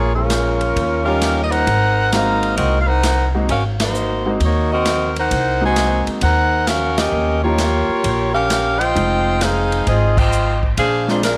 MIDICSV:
0, 0, Header, 1, 6, 480
1, 0, Start_track
1, 0, Tempo, 455235
1, 1760, Time_signature, 4, 2, 24, 8
1, 11993, End_track
2, 0, Start_track
2, 0, Title_t, "Saxophone section"
2, 0, Program_c, 0, 65
2, 0, Note_on_c, 0, 58, 77
2, 0, Note_on_c, 0, 65, 72
2, 0, Note_on_c, 0, 68, 71
2, 0, Note_on_c, 0, 73, 84
2, 141, Note_off_c, 0, 65, 0
2, 154, Note_on_c, 0, 65, 74
2, 159, Note_on_c, 0, 56, 68
2, 160, Note_on_c, 0, 61, 69
2, 164, Note_on_c, 0, 70, 81
2, 168, Note_off_c, 0, 58, 0
2, 168, Note_off_c, 0, 73, 0
2, 171, Note_off_c, 0, 68, 0
2, 756, Note_off_c, 0, 56, 0
2, 1075, Note_off_c, 0, 65, 0
2, 1079, Note_off_c, 0, 61, 0
2, 1081, Note_off_c, 0, 70, 0
2, 1112, Note_on_c, 0, 67, 84
2, 1113, Note_on_c, 0, 70, 84
2, 1115, Note_on_c, 0, 61, 81
2, 1117, Note_on_c, 0, 77, 95
2, 1498, Note_off_c, 0, 67, 0
2, 1498, Note_off_c, 0, 70, 0
2, 1499, Note_off_c, 0, 61, 0
2, 1500, Note_off_c, 0, 77, 0
2, 1517, Note_on_c, 0, 75, 70
2, 1586, Note_on_c, 0, 70, 82
2, 1589, Note_on_c, 0, 63, 81
2, 1590, Note_on_c, 0, 72, 81
2, 1593, Note_on_c, 0, 78, 99
2, 1609, Note_off_c, 0, 75, 0
2, 2223, Note_off_c, 0, 63, 0
2, 2224, Note_off_c, 0, 70, 0
2, 2226, Note_off_c, 0, 72, 0
2, 2233, Note_off_c, 0, 78, 0
2, 2235, Note_on_c, 0, 63, 78
2, 2236, Note_on_c, 0, 70, 86
2, 2238, Note_on_c, 0, 72, 85
2, 2242, Note_on_c, 0, 77, 91
2, 2698, Note_off_c, 0, 70, 0
2, 2711, Note_on_c, 0, 70, 79
2, 2715, Note_on_c, 0, 60, 79
2, 2716, Note_off_c, 0, 63, 0
2, 2717, Note_off_c, 0, 72, 0
2, 2719, Note_off_c, 0, 77, 0
2, 2719, Note_on_c, 0, 75, 88
2, 2721, Note_on_c, 0, 66, 76
2, 2921, Note_off_c, 0, 70, 0
2, 2923, Note_off_c, 0, 60, 0
2, 2925, Note_off_c, 0, 75, 0
2, 2926, Note_off_c, 0, 66, 0
2, 2965, Note_on_c, 0, 77, 62
2, 3030, Note_on_c, 0, 70, 71
2, 3030, Note_on_c, 0, 72, 76
2, 3035, Note_on_c, 0, 78, 82
2, 3040, Note_on_c, 0, 63, 71
2, 3052, Note_off_c, 0, 77, 0
2, 3453, Note_off_c, 0, 70, 0
2, 3453, Note_off_c, 0, 72, 0
2, 3456, Note_off_c, 0, 78, 0
2, 3458, Note_off_c, 0, 63, 0
2, 3691, Note_on_c, 0, 77, 83
2, 3695, Note_on_c, 0, 61, 70
2, 3696, Note_on_c, 0, 66, 70
2, 3700, Note_on_c, 0, 70, 69
2, 3833, Note_off_c, 0, 77, 0
2, 3836, Note_off_c, 0, 61, 0
2, 3836, Note_off_c, 0, 66, 0
2, 3840, Note_off_c, 0, 70, 0
2, 4019, Note_on_c, 0, 58, 70
2, 4019, Note_on_c, 0, 66, 66
2, 4020, Note_on_c, 0, 72, 82
2, 4026, Note_on_c, 0, 63, 65
2, 4602, Note_off_c, 0, 58, 0
2, 4602, Note_off_c, 0, 66, 0
2, 4603, Note_off_c, 0, 72, 0
2, 4606, Note_off_c, 0, 63, 0
2, 4681, Note_on_c, 0, 66, 72
2, 4684, Note_on_c, 0, 63, 74
2, 4685, Note_on_c, 0, 58, 74
2, 4688, Note_on_c, 0, 73, 83
2, 4974, Note_off_c, 0, 66, 0
2, 4981, Note_off_c, 0, 63, 0
2, 4981, Note_on_c, 0, 60, 79
2, 4982, Note_off_c, 0, 58, 0
2, 4983, Note_on_c, 0, 75, 86
2, 4984, Note_off_c, 0, 73, 0
2, 4987, Note_on_c, 0, 66, 78
2, 4994, Note_on_c, 0, 70, 74
2, 5416, Note_off_c, 0, 60, 0
2, 5417, Note_off_c, 0, 75, 0
2, 5419, Note_off_c, 0, 66, 0
2, 5423, Note_off_c, 0, 70, 0
2, 5480, Note_on_c, 0, 63, 77
2, 5480, Note_on_c, 0, 70, 86
2, 5480, Note_on_c, 0, 72, 81
2, 5481, Note_on_c, 0, 78, 92
2, 5938, Note_off_c, 0, 63, 0
2, 5938, Note_off_c, 0, 70, 0
2, 5938, Note_off_c, 0, 72, 0
2, 5939, Note_off_c, 0, 78, 0
2, 5960, Note_on_c, 0, 66, 80
2, 5960, Note_on_c, 0, 72, 80
2, 5965, Note_on_c, 0, 75, 79
2, 5965, Note_on_c, 0, 80, 95
2, 6386, Note_off_c, 0, 66, 0
2, 6386, Note_off_c, 0, 72, 0
2, 6389, Note_off_c, 0, 75, 0
2, 6389, Note_off_c, 0, 80, 0
2, 6566, Note_on_c, 0, 78, 88
2, 6569, Note_on_c, 0, 70, 76
2, 6569, Note_on_c, 0, 72, 74
2, 6573, Note_on_c, 0, 63, 75
2, 7007, Note_off_c, 0, 78, 0
2, 7009, Note_off_c, 0, 70, 0
2, 7009, Note_off_c, 0, 72, 0
2, 7010, Note_off_c, 0, 63, 0
2, 7037, Note_on_c, 0, 66, 76
2, 7038, Note_on_c, 0, 61, 70
2, 7038, Note_on_c, 0, 70, 75
2, 7040, Note_on_c, 0, 77, 86
2, 7354, Note_off_c, 0, 70, 0
2, 7355, Note_off_c, 0, 61, 0
2, 7359, Note_off_c, 0, 66, 0
2, 7360, Note_off_c, 0, 77, 0
2, 7363, Note_on_c, 0, 67, 72
2, 7363, Note_on_c, 0, 75, 85
2, 7366, Note_on_c, 0, 70, 70
2, 7368, Note_on_c, 0, 61, 76
2, 7829, Note_off_c, 0, 67, 0
2, 7838, Note_on_c, 0, 65, 71
2, 7841, Note_off_c, 0, 75, 0
2, 7841, Note_on_c, 0, 67, 73
2, 7843, Note_off_c, 0, 61, 0
2, 7843, Note_off_c, 0, 70, 0
2, 7846, Note_on_c, 0, 73, 89
2, 7847, Note_on_c, 0, 58, 74
2, 8757, Note_off_c, 0, 65, 0
2, 8759, Note_off_c, 0, 67, 0
2, 8762, Note_off_c, 0, 58, 0
2, 8762, Note_off_c, 0, 73, 0
2, 8800, Note_on_c, 0, 61, 79
2, 8802, Note_on_c, 0, 77, 94
2, 8803, Note_on_c, 0, 67, 78
2, 8803, Note_on_c, 0, 70, 78
2, 9247, Note_off_c, 0, 61, 0
2, 9248, Note_off_c, 0, 70, 0
2, 9248, Note_off_c, 0, 77, 0
2, 9249, Note_off_c, 0, 67, 0
2, 9271, Note_on_c, 0, 75, 84
2, 9272, Note_on_c, 0, 65, 85
2, 9275, Note_on_c, 0, 79, 98
2, 9277, Note_on_c, 0, 72, 88
2, 9914, Note_off_c, 0, 75, 0
2, 9915, Note_off_c, 0, 65, 0
2, 9916, Note_off_c, 0, 79, 0
2, 9917, Note_off_c, 0, 72, 0
2, 9939, Note_on_c, 0, 68, 81
2, 9940, Note_on_c, 0, 72, 79
2, 9943, Note_on_c, 0, 63, 77
2, 9944, Note_on_c, 0, 77, 94
2, 10406, Note_off_c, 0, 68, 0
2, 10411, Note_off_c, 0, 72, 0
2, 10412, Note_off_c, 0, 63, 0
2, 10412, Note_off_c, 0, 77, 0
2, 10419, Note_on_c, 0, 68, 73
2, 10425, Note_on_c, 0, 60, 75
2, 10426, Note_on_c, 0, 75, 85
2, 10433, Note_on_c, 0, 65, 75
2, 10711, Note_off_c, 0, 68, 0
2, 10714, Note_off_c, 0, 60, 0
2, 10715, Note_off_c, 0, 75, 0
2, 10719, Note_off_c, 0, 65, 0
2, 10736, Note_on_c, 0, 72, 77
2, 10736, Note_on_c, 0, 75, 76
2, 10741, Note_on_c, 0, 65, 76
2, 10741, Note_on_c, 0, 79, 90
2, 11211, Note_off_c, 0, 72, 0
2, 11211, Note_off_c, 0, 75, 0
2, 11213, Note_off_c, 0, 65, 0
2, 11213, Note_off_c, 0, 79, 0
2, 11369, Note_on_c, 0, 68, 88
2, 11370, Note_on_c, 0, 62, 84
2, 11373, Note_on_c, 0, 72, 80
2, 11375, Note_on_c, 0, 77, 93
2, 11667, Note_off_c, 0, 62, 0
2, 11667, Note_off_c, 0, 68, 0
2, 11669, Note_off_c, 0, 72, 0
2, 11670, Note_off_c, 0, 77, 0
2, 11696, Note_on_c, 0, 56, 73
2, 11700, Note_on_c, 0, 72, 88
2, 11706, Note_on_c, 0, 62, 74
2, 11707, Note_on_c, 0, 65, 73
2, 11838, Note_off_c, 0, 56, 0
2, 11840, Note_off_c, 0, 72, 0
2, 11843, Note_off_c, 0, 62, 0
2, 11843, Note_off_c, 0, 65, 0
2, 11854, Note_on_c, 0, 65, 80
2, 11859, Note_on_c, 0, 56, 77
2, 11860, Note_on_c, 0, 70, 91
2, 11861, Note_on_c, 0, 62, 78
2, 11993, Note_off_c, 0, 56, 0
2, 11993, Note_off_c, 0, 62, 0
2, 11993, Note_off_c, 0, 65, 0
2, 11993, Note_off_c, 0, 70, 0
2, 11993, End_track
3, 0, Start_track
3, 0, Title_t, "Grand piano"
3, 0, Program_c, 1, 0
3, 1120, Note_on_c, 1, 55, 59
3, 1124, Note_on_c, 1, 61, 58
3, 1126, Note_on_c, 1, 58, 55
3, 1129, Note_on_c, 1, 63, 54
3, 1131, Note_on_c, 1, 65, 69
3, 1726, Note_off_c, 1, 55, 0
3, 1728, Note_off_c, 1, 61, 0
3, 1729, Note_off_c, 1, 58, 0
3, 1731, Note_off_c, 1, 63, 0
3, 1732, Note_off_c, 1, 65, 0
3, 2241, Note_on_c, 1, 56, 59
3, 2242, Note_on_c, 1, 58, 50
3, 2243, Note_on_c, 1, 60, 55
3, 2246, Note_on_c, 1, 63, 50
3, 2251, Note_on_c, 1, 66, 66
3, 2976, Note_off_c, 1, 56, 0
3, 2977, Note_off_c, 1, 58, 0
3, 2977, Note_off_c, 1, 60, 0
3, 2979, Note_off_c, 1, 63, 0
3, 2981, Note_off_c, 1, 66, 0
3, 3527, Note_on_c, 1, 58, 50
3, 3527, Note_on_c, 1, 63, 52
3, 3528, Note_on_c, 1, 56, 59
3, 3530, Note_on_c, 1, 66, 59
3, 3534, Note_on_c, 1, 60, 48
3, 3664, Note_off_c, 1, 56, 0
3, 3664, Note_off_c, 1, 58, 0
3, 3664, Note_off_c, 1, 63, 0
3, 3665, Note_off_c, 1, 66, 0
3, 3667, Note_off_c, 1, 60, 0
3, 4490, Note_on_c, 1, 58, 54
3, 4491, Note_on_c, 1, 56, 54
3, 4491, Note_on_c, 1, 60, 53
3, 4492, Note_on_c, 1, 63, 51
3, 4495, Note_on_c, 1, 66, 59
3, 4625, Note_off_c, 1, 56, 0
3, 4625, Note_off_c, 1, 58, 0
3, 4625, Note_off_c, 1, 60, 0
3, 4625, Note_off_c, 1, 63, 0
3, 4627, Note_off_c, 1, 66, 0
3, 5914, Note_on_c, 1, 60, 55
3, 5916, Note_on_c, 1, 56, 58
3, 5917, Note_on_c, 1, 58, 52
3, 5920, Note_on_c, 1, 63, 51
3, 5923, Note_on_c, 1, 66, 65
3, 6521, Note_off_c, 1, 60, 0
3, 6522, Note_off_c, 1, 56, 0
3, 6523, Note_off_c, 1, 58, 0
3, 6524, Note_off_c, 1, 63, 0
3, 6525, Note_off_c, 1, 66, 0
3, 7849, Note_on_c, 1, 53, 56
3, 7854, Note_on_c, 1, 61, 50
3, 7855, Note_on_c, 1, 67, 58
3, 7856, Note_on_c, 1, 58, 49
3, 7856, Note_on_c, 1, 63, 51
3, 7985, Note_off_c, 1, 53, 0
3, 7988, Note_off_c, 1, 58, 0
3, 7988, Note_off_c, 1, 61, 0
3, 7988, Note_off_c, 1, 63, 0
3, 7988, Note_off_c, 1, 67, 0
3, 9435, Note_on_c, 1, 56, 49
3, 9436, Note_on_c, 1, 53, 54
3, 9438, Note_on_c, 1, 63, 47
3, 9439, Note_on_c, 1, 60, 49
3, 9444, Note_on_c, 1, 79, 54
3, 10785, Note_off_c, 1, 56, 0
3, 10786, Note_off_c, 1, 53, 0
3, 10787, Note_off_c, 1, 60, 0
3, 10787, Note_off_c, 1, 63, 0
3, 10790, Note_off_c, 1, 79, 0
3, 11683, Note_on_c, 1, 56, 55
3, 11685, Note_on_c, 1, 58, 53
3, 11685, Note_on_c, 1, 65, 61
3, 11689, Note_on_c, 1, 60, 48
3, 11689, Note_on_c, 1, 62, 52
3, 11826, Note_off_c, 1, 56, 0
3, 11827, Note_off_c, 1, 58, 0
3, 11827, Note_off_c, 1, 65, 0
3, 11829, Note_off_c, 1, 60, 0
3, 11829, Note_off_c, 1, 62, 0
3, 11993, End_track
4, 0, Start_track
4, 0, Title_t, "Upright bass"
4, 0, Program_c, 2, 32
4, 0, Note_on_c, 2, 34, 84
4, 754, Note_off_c, 2, 34, 0
4, 803, Note_on_c, 2, 39, 87
4, 1718, Note_off_c, 2, 39, 0
4, 1760, Note_on_c, 2, 32, 82
4, 2675, Note_off_c, 2, 32, 0
4, 2716, Note_on_c, 2, 36, 87
4, 3633, Note_off_c, 2, 36, 0
4, 3682, Note_on_c, 2, 32, 82
4, 4595, Note_off_c, 2, 32, 0
4, 4639, Note_on_c, 2, 39, 88
4, 5554, Note_off_c, 2, 39, 0
4, 5599, Note_on_c, 2, 36, 82
4, 6357, Note_off_c, 2, 36, 0
4, 6559, Note_on_c, 2, 39, 92
4, 7475, Note_off_c, 2, 39, 0
4, 7510, Note_on_c, 2, 39, 88
4, 8274, Note_off_c, 2, 39, 0
4, 8478, Note_on_c, 2, 34, 86
4, 9397, Note_off_c, 2, 34, 0
4, 9443, Note_on_c, 2, 29, 82
4, 10360, Note_off_c, 2, 29, 0
4, 10405, Note_on_c, 2, 32, 87
4, 11322, Note_off_c, 2, 32, 0
4, 11363, Note_on_c, 2, 34, 84
4, 11962, Note_off_c, 2, 34, 0
4, 11993, End_track
5, 0, Start_track
5, 0, Title_t, "Muted upright bass strokes"
5, 6398, Note_on_c, 9, 29, 41
5, 6504, Note_off_c, 9, 29, 0
5, 8311, Note_on_c, 9, 29, 38
5, 8416, Note_off_c, 9, 29, 0
5, 11993, End_track
6, 0, Start_track
6, 0, Title_t, "Drums"
6, 315, Note_on_c, 9, 44, 58
6, 315, Note_on_c, 9, 51, 64
6, 318, Note_on_c, 9, 38, 64
6, 420, Note_off_c, 9, 44, 0
6, 420, Note_off_c, 9, 51, 0
6, 423, Note_off_c, 9, 38, 0
6, 640, Note_on_c, 9, 51, 39
6, 746, Note_off_c, 9, 51, 0
6, 805, Note_on_c, 9, 36, 32
6, 807, Note_on_c, 9, 51, 50
6, 911, Note_off_c, 9, 36, 0
6, 912, Note_off_c, 9, 51, 0
6, 1281, Note_on_c, 9, 44, 50
6, 1281, Note_on_c, 9, 51, 64
6, 1285, Note_on_c, 9, 38, 62
6, 1387, Note_off_c, 9, 44, 0
6, 1387, Note_off_c, 9, 51, 0
6, 1390, Note_off_c, 9, 38, 0
6, 1604, Note_on_c, 9, 51, 44
6, 1710, Note_off_c, 9, 51, 0
6, 1762, Note_on_c, 9, 36, 32
6, 1762, Note_on_c, 9, 51, 53
6, 1868, Note_off_c, 9, 36, 0
6, 1868, Note_off_c, 9, 51, 0
6, 2240, Note_on_c, 9, 44, 54
6, 2240, Note_on_c, 9, 51, 65
6, 2243, Note_on_c, 9, 38, 58
6, 2345, Note_off_c, 9, 44, 0
6, 2345, Note_off_c, 9, 51, 0
6, 2348, Note_off_c, 9, 38, 0
6, 2559, Note_on_c, 9, 51, 41
6, 2665, Note_off_c, 9, 51, 0
6, 2714, Note_on_c, 9, 51, 55
6, 2719, Note_on_c, 9, 36, 31
6, 2820, Note_off_c, 9, 51, 0
6, 2825, Note_off_c, 9, 36, 0
6, 3198, Note_on_c, 9, 44, 59
6, 3198, Note_on_c, 9, 51, 67
6, 3201, Note_on_c, 9, 38, 62
6, 3304, Note_off_c, 9, 44, 0
6, 3304, Note_off_c, 9, 51, 0
6, 3307, Note_off_c, 9, 38, 0
6, 3679, Note_on_c, 9, 51, 55
6, 3681, Note_on_c, 9, 36, 31
6, 3784, Note_off_c, 9, 51, 0
6, 3786, Note_off_c, 9, 36, 0
6, 4004, Note_on_c, 9, 51, 70
6, 4007, Note_on_c, 9, 38, 80
6, 4109, Note_off_c, 9, 51, 0
6, 4113, Note_off_c, 9, 38, 0
6, 4157, Note_on_c, 9, 44, 59
6, 4263, Note_off_c, 9, 44, 0
6, 4642, Note_on_c, 9, 36, 29
6, 4643, Note_on_c, 9, 51, 55
6, 4747, Note_off_c, 9, 36, 0
6, 4748, Note_off_c, 9, 51, 0
6, 5118, Note_on_c, 9, 44, 47
6, 5118, Note_on_c, 9, 51, 62
6, 5121, Note_on_c, 9, 38, 63
6, 5224, Note_off_c, 9, 44, 0
6, 5224, Note_off_c, 9, 51, 0
6, 5227, Note_off_c, 9, 38, 0
6, 5443, Note_on_c, 9, 51, 43
6, 5549, Note_off_c, 9, 51, 0
6, 5600, Note_on_c, 9, 36, 30
6, 5600, Note_on_c, 9, 51, 63
6, 5705, Note_off_c, 9, 51, 0
6, 5706, Note_off_c, 9, 36, 0
6, 6075, Note_on_c, 9, 44, 48
6, 6075, Note_on_c, 9, 51, 64
6, 6078, Note_on_c, 9, 38, 60
6, 6180, Note_off_c, 9, 44, 0
6, 6180, Note_off_c, 9, 51, 0
6, 6184, Note_off_c, 9, 38, 0
6, 6400, Note_on_c, 9, 51, 42
6, 6505, Note_off_c, 9, 51, 0
6, 6550, Note_on_c, 9, 51, 58
6, 6556, Note_on_c, 9, 36, 32
6, 6656, Note_off_c, 9, 51, 0
6, 6661, Note_off_c, 9, 36, 0
6, 7034, Note_on_c, 9, 44, 51
6, 7034, Note_on_c, 9, 51, 66
6, 7037, Note_on_c, 9, 38, 64
6, 7140, Note_off_c, 9, 44, 0
6, 7140, Note_off_c, 9, 51, 0
6, 7143, Note_off_c, 9, 38, 0
6, 7356, Note_on_c, 9, 51, 61
6, 7359, Note_on_c, 9, 38, 78
6, 7461, Note_off_c, 9, 51, 0
6, 7465, Note_off_c, 9, 38, 0
6, 7996, Note_on_c, 9, 44, 50
6, 7996, Note_on_c, 9, 51, 62
6, 7999, Note_on_c, 9, 38, 62
6, 8101, Note_off_c, 9, 44, 0
6, 8101, Note_off_c, 9, 51, 0
6, 8104, Note_off_c, 9, 38, 0
6, 8479, Note_on_c, 9, 51, 62
6, 8482, Note_on_c, 9, 36, 30
6, 8584, Note_off_c, 9, 51, 0
6, 8588, Note_off_c, 9, 36, 0
6, 8963, Note_on_c, 9, 44, 58
6, 8963, Note_on_c, 9, 51, 67
6, 8966, Note_on_c, 9, 38, 65
6, 9069, Note_off_c, 9, 44, 0
6, 9069, Note_off_c, 9, 51, 0
6, 9072, Note_off_c, 9, 38, 0
6, 9289, Note_on_c, 9, 51, 45
6, 9395, Note_off_c, 9, 51, 0
6, 9446, Note_on_c, 9, 36, 33
6, 9450, Note_on_c, 9, 51, 51
6, 9551, Note_off_c, 9, 36, 0
6, 9556, Note_off_c, 9, 51, 0
6, 9922, Note_on_c, 9, 44, 48
6, 9922, Note_on_c, 9, 51, 67
6, 9925, Note_on_c, 9, 38, 64
6, 10027, Note_off_c, 9, 44, 0
6, 10027, Note_off_c, 9, 51, 0
6, 10030, Note_off_c, 9, 38, 0
6, 10250, Note_on_c, 9, 51, 40
6, 10356, Note_off_c, 9, 51, 0
6, 10404, Note_on_c, 9, 51, 51
6, 10405, Note_on_c, 9, 36, 30
6, 10509, Note_off_c, 9, 51, 0
6, 10510, Note_off_c, 9, 36, 0
6, 10727, Note_on_c, 9, 36, 83
6, 10731, Note_on_c, 9, 49, 75
6, 10832, Note_off_c, 9, 36, 0
6, 10836, Note_off_c, 9, 49, 0
6, 10882, Note_on_c, 9, 44, 54
6, 10988, Note_off_c, 9, 44, 0
6, 11207, Note_on_c, 9, 36, 52
6, 11312, Note_off_c, 9, 36, 0
6, 11360, Note_on_c, 9, 51, 59
6, 11363, Note_on_c, 9, 36, 31
6, 11466, Note_off_c, 9, 51, 0
6, 11468, Note_off_c, 9, 36, 0
6, 11685, Note_on_c, 9, 38, 35
6, 11791, Note_off_c, 9, 38, 0
6, 11843, Note_on_c, 9, 44, 56
6, 11843, Note_on_c, 9, 51, 66
6, 11846, Note_on_c, 9, 38, 63
6, 11948, Note_off_c, 9, 44, 0
6, 11948, Note_off_c, 9, 51, 0
6, 11951, Note_off_c, 9, 38, 0
6, 11993, End_track
0, 0, End_of_file